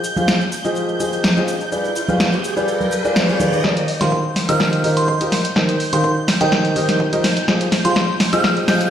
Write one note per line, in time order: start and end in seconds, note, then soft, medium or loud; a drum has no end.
0.00 3.63 G6 medium
0.00 tambourine medium
0.00 riser medium
0.04 shaker medium
0.16 0.33 F3 medium
0.16 0.33 F4 medium
0.16 0.33 G4 medium
0.16 0.33 G#4 medium
0.16 0.33 C5 medium
0.16 0.33 F5 medium
0.16 tambourine soft
0.16 high conga medium
0.16 shaker soft
0.28 snare loud
0.28 tambourine soft
0.28 shaker soft
0.41 shaker soft
0.52 tambourine medium
0.52 shaker medium
0.64 0.97 F3 medium
0.64 0.97 F4 medium
0.64 0.97 G4 medium
0.64 0.97 G#4 medium
0.64 0.97 C5 medium
0.64 0.97 D#5 medium
0.64 tambourine soft
0.64 shaker soft
0.75 tambourine soft
0.75 shaker soft
0.89 shaker soft
1.00 1.27 F3 medium
1.00 1.27 F4 medium
1.00 1.27 G4 medium
1.00 1.27 G#4 medium
1.00 1.27 C5 medium
1.00 1.27 D#5 medium
1.00 tambourine medium
1.00 shaker medium
1.13 tambourine soft
1.13 shaker soft
1.24 snare loud
1.24 tambourine soft
1.24 high conga medium
1.24 shaker soft
1.37 1.53 F3 medium
1.37 1.53 F4 medium
1.37 1.53 G4 medium
1.37 1.53 G#4 medium
1.37 1.53 C5 medium
1.37 1.53 D#5 medium
1.37 shaker soft
1.48 tambourine medium
1.48 shaker medium
1.60 tambourine soft
1.60 shaker soft
1.72 1.89 G3 medium
1.72 1.89 F4 medium
1.72 1.89 G4 medium
1.72 1.89 G#4 medium
1.72 1.89 B4 medium
1.72 1.89 D5 medium
1.72 tambourine soft
1.72 shaker soft
1.84 tambourine soft
1.84 shaker soft
1.95 tambourine medium
1.95 shaker medium
2.08 2.25 G3 medium
2.08 2.25 F4 medium
2.08 2.25 G4 medium
2.08 2.25 G#4 medium
2.08 2.25 B4 medium
2.08 2.25 F5 medium
2.08 tambourine soft
2.08 high conga medium
2.08 shaker soft
2.20 snare loud
2.20 tambourine soft
2.20 shaker soft
2.32 tambourine soft
2.32 shaker soft
2.44 tambourine medium
2.44 shaker medium
2.57 2.89 G3 medium
2.57 2.89 F4 medium
2.57 2.89 G4 medium
2.57 2.89 G#4 medium
2.57 2.89 B4 medium
2.57 2.89 D5 medium
2.57 tambourine soft
2.57 shaker soft
2.68 tambourine soft
2.68 shaker soft
2.81 tambourine soft
2.81 high conga medium
2.81 shaker soft
2.91 tambourine medium
2.91 shaker medium
3.04 3.21 G3 medium
3.04 3.21 F4 medium
3.04 3.21 G4 medium
3.04 3.21 G#4 medium
3.04 3.21 B4 medium
3.04 3.21 D5 loud
3.04 tambourine soft
3.04 shaker soft
3.16 snare loud
3.16 tambourine soft
3.16 shaker soft
3.29 3.38 G3 medium
3.29 3.38 F4 medium
3.29 3.38 G4 medium
3.29 3.38 G#4 medium
3.29 3.38 B4 medium
3.29 3.38 D5 medium
3.29 tambourine soft
3.29 shaker soft
3.40 3.57 D#3 medium
3.40 3.57 F4 medium
3.40 3.57 G4 medium
3.40 3.57 G#4 medium
3.40 3.57 B4 medium
3.40 3.57 D5 medium
3.40 tambourine medium
3.40 high conga medium
3.40 shaker medium
3.52 tambourine soft
3.52 shaker soft
3.64 3.81 D#3 medium
3.64 3.81 F4 medium
3.64 3.81 G4 medium
3.64 3.81 A#4 medium
3.64 3.81 C5 medium
3.64 3.81 D#5 medium
3.64 8.90 G6 medium
3.64 kick loud
3.64 snare soft
3.77 closed hi-hat medium
3.88 open hi-hat loud
4.01 4.17 D#3 medium
4.01 4.17 F4 medium
4.01 4.17 G4 medium
4.01 4.17 A#4 medium
4.01 4.17 C5 medium
4.01 4.17 F5 medium
4.01 4.14 C6 medium
4.01 snare soft
4.01 closed hi-hat medium
4.12 kick loud
4.36 snare soft
4.36 open hi-hat loud
4.49 4.81 D#3 medium
4.49 4.81 F4 medium
4.49 4.81 G4 medium
4.49 4.81 A#4 medium
4.49 4.81 C5 medium
4.49 4.81 D#5 loud
4.49 4.62 F6 medium
4.49 closed hi-hat medium
4.60 kick loud
4.60 snare medium
4.73 closed hi-hat soft
4.84 5.11 D#3 medium
4.84 5.11 F4 medium
4.84 5.11 G4 medium
4.84 5.11 A#4 medium
4.84 5.11 C5 medium
4.84 5.11 D#5 medium
4.84 open hi-hat loud
4.97 5.04 C6 medium
4.97 closed hi-hat medium
5.08 5.16 C6 medium
5.08 kick loud
5.21 5.31 F4 medium
5.21 5.31 G4 medium
5.21 5.31 A#4 medium
5.21 5.31 C5 medium
5.21 5.31 D#5 medium
5.21 closed hi-hat medium
5.32 snare medium
5.32 open hi-hat loud
5.45 closed hi-hat medium
5.56 5.73 D#3 medium
5.56 5.73 D#4 medium
5.56 5.73 G4 medium
5.56 5.73 A#4 medium
5.56 5.73 C5 medium
5.56 5.73 D#5 medium
5.56 kick loud
5.56 snare medium
5.69 closed hi-hat medium
5.80 open hi-hat loud
5.93 6.09 D#3 medium
5.93 6.09 D#4 medium
5.93 6.09 G4 medium
5.93 6.09 A#4 medium
5.93 6.09 C5 medium
5.93 6.09 F5 medium
5.93 6.06 C6 medium
5.93 closed hi-hat medium
6.04 kick loud
6.28 snare medium
6.28 open hi-hat loud
6.41 6.73 D#3 medium
6.41 6.73 D#4 medium
6.41 6.73 G4 medium
6.41 6.73 A#4 medium
6.41 6.73 C5 medium
6.41 6.73 D#5 loud
6.41 6.76 G5 medium
6.41 closed hi-hat medium
6.52 kick loud
6.52 snare medium
6.65 closed hi-hat soft
6.76 7.03 D#3 medium
6.76 7.03 D#4 medium
6.76 7.03 G4 medium
6.76 7.03 A#4 medium
6.76 7.03 C5 medium
6.76 7.03 D#5 medium
6.76 open hi-hat loud
6.89 snare medium
6.89 closed hi-hat medium
7.00 kick loud
7.13 7.23 F3 medium
7.13 7.23 D#4 medium
7.13 7.23 G4 medium
7.13 7.23 A#4 medium
7.13 7.23 C5 medium
7.13 7.23 D#5 medium
7.13 closed hi-hat medium
7.24 snare medium
7.24 open hi-hat loud
7.37 closed hi-hat medium
7.48 7.65 F3 medium
7.48 7.65 F4 medium
7.48 7.65 G4 medium
7.48 7.65 G#4 medium
7.48 7.65 C5 medium
7.48 7.65 D#5 medium
7.48 kick loud
7.48 snare medium
7.61 closed hi-hat soft
7.72 snare medium
7.72 open hi-hat loud
7.85 8.01 F3 medium
7.85 8.01 F4 medium
7.85 8.01 G4 medium
7.85 8.01 G#4 medium
7.85 8.01 C5 medium
7.85 8.01 F5 medium
7.85 7.98 C6 medium
7.85 closed hi-hat medium
7.96 kick loud
7.96 snare medium
8.20 snare medium
8.20 open hi-hat loud
8.33 8.65 F3 medium
8.33 8.65 F4 medium
8.33 8.65 G4 medium
8.33 8.65 G#4 medium
8.33 8.65 C5 medium
8.33 8.65 D#5 loud
8.33 8.46 F6 medium
8.33 closed hi-hat medium
8.44 kick loud
8.44 snare medium
8.57 closed hi-hat soft
8.68 8.90 F3 medium
8.68 8.90 F4 medium
8.68 8.90 G4 medium
8.68 8.90 G#4 medium
8.68 8.90 C5 medium
8.68 8.90 D#5 medium
8.68 8.76 G6 medium
8.68 snare medium
8.68 open hi-hat loud
8.81 8.88 G6 medium
8.81 closed hi-hat medium